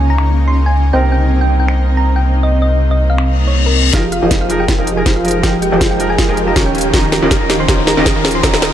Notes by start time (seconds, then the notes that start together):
Already playing: C#2 C#3 A#3 C#4 D#4 F4 C#5 D#5 F5 A#5
0.10 A#5
0.18 finger snap
0.48 C6
0.66 G#5
0.91 C2 C3 G3 C4 D#4 C5 D#5 G5 A#5
0.95 A#4
1.12 G5
1.41 G5
1.60 G5
1.68 finger snap
1.97 A#5
2.16 G5
2.43 D#5
2.62 D#5
2.91 D#5
3.10 F5
3.18 finger snap, reverse cymbal
3.48 C#5
3.66 A#4
3.92 F1 F3 G#3 D#4 F4 G4 G#4 A#4 D#5 F5 G5, kick, snare, closed hi-hat, riser
4.12 F4 F5, closed hi-hat
4.21 F1 F3 D#4 F4 G4 G#4 A#4 C5 D#5
4.31 kick, snare, closed hi-hat
4.41 F4 F5
4.49 F3 D#4 G4 G#4 A#4, closed hi-hat
4.60 G4 G5
4.68 F1 F3 F4 G4 G#4 A#4 D#5, kick, snare, closed hi-hat
4.78 F1 F3 D#4 F4 G4 G#4 A#4 D#5
4.87 closed hi-hat
4.96 F3 D#4 G4 G#4 A#4 G#5
5.06 F1 F3 F4 G4 G#4 A#4 C5, kick, snare, closed hi-hat
5.16 F4 F5
5.24 F3 D#4 G4 G#4 A#4, closed hi-hat
5.28 closed hi-hat
5.31 closed hi-hat
5.42 F1 F3 D#4 F4 G4 G#4 A#4 D#5 G5, kick, snare, closed hi-hat
5.62 G4 G5, closed hi-hat
5.71 F1 F3 D#4 F4 G4 G#4 A#4 C5 D#5
5.81 kick, snare, closed hi-hat
5.91 G4 G5
5.98 F3 D#4 G4 G#4 A#4, closed hi-hat
6.10 G#4 G#5
6.18 F1 F3 F4 G4 G#4 A#4 D#5, kick, snare, closed hi-hat
6.28 F1 F3 D#4 F4 G4 G#4 A#4 D#5
6.37 closed hi-hat
6.46 F3 D#4 G4 G#4 A#4 A#5
6.56 D#1 D#3 C#4 F4 G4 C#5, kick, snare, closed hi-hat
6.66 G4 G5
6.74 D#3 C#4 F4 G4, closed hi-hat
6.78 closed hi-hat
6.81 closed hi-hat
6.92 D#1 D#3 C#4 F4 G4 A#4 D#5 A#5, kick, snare, closed hi-hat
7.12 A#4 A#5, snare, closed hi-hat
7.21 D#1 D#3 C#4 F4 G4 A#4 D#5
7.31 kick, snare, closed hi-hat
7.41 A#4 A#5
7.49 D#3 C#4 F4 G4, snare, closed hi-hat
7.60 C5 C6
7.67 D#1 D#3 C#4 F4 G4 A#4 D#5 A#5, kick, snare, closed hi-hat
7.87 A#4 A#5, snare, closed hi-hat
7.96 D#1 D#3 C#4 F4 G4 A#4 D#5
8.06 kick, snare, closed hi-hat
8.16 A#4 A#5
8.23 D#3 C#4 F4 G4, snare, closed hi-hat
8.28 closed hi-hat
8.31 closed hi-hat
8.35 C5 C6
8.42 D#1 D#3 C#4 F4 G4 A#4 D#5 A#5, kick, snare, closed hi-hat
8.54 snare
8.62 A#4 A#5, snare, closed hi-hat